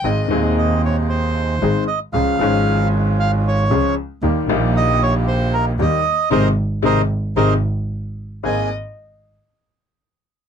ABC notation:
X:1
M:4/4
L:1/16
Q:1/4=115
K:Ab
V:1 name="Violin"
e3 z12 z | z16 | z16 | z16 |
e2 z12 z2 |]
V:2 name="Bandoneon"
z4 e2 d2 c6 e2 | f6 z2 f2 d4 z2 | z4 e2 d2 c2 B2 e4 | [Bce]2 z2 [Bce]2 z2 [Bce]2 z6 |
a2 z12 z2 |]
V:3 name="Bandoneon"
[CEA]2 [CEA]8- [CEA]2 [CEA]2 z2 | [DFA]2 [DFA]8- [DFA]2 [DFA]2 z2 | [B,EG]2 [B,EG]8- [B,EG]2 [B,EG]2 z2 | [CEA]2 z2 [CEA]2 z2 [CEA]2 z6 |
[B,CA]2 z12 z2 |]
V:4 name="Upright piano" clef=bass
[A,,,A,,E,A,CA]2 [E,,,E,,E,A,CA]8- [E,,,E,,E,A,CA]2 [A,,,A,,E,A,CA]2 z2 | [D,,D,F,A,DA]2 [A,,,A,,F,A,DA]8- [A,,,A,,F,A,DA]2 [D,,D,F,A,DA]2 z2 | [E,,E,G,B,G]2 [B,,,B,,E,G,B,G]8- [B,,,B,,E,G,B,G]2 [E,,E,G,B,G]2 z2 | [C,E,A,]2 z2 [C,E,A,]2 z2 [C,E,A,]2 z6 |
[A,,,B,CA]2 z12 z2 |]
V:5 name="Double bass" clef=bass
A,,,2 E,,8- E,,2 A,,,2 z2 | D,,2 A,,,8- A,,,2 D,,2 z2 | E,,2 B,,,8- B,,,2 E,,2 z2 | A,,,2 z2 A,,,2 z2 A,,,2 z6 |
A,,,2 z12 z2 |]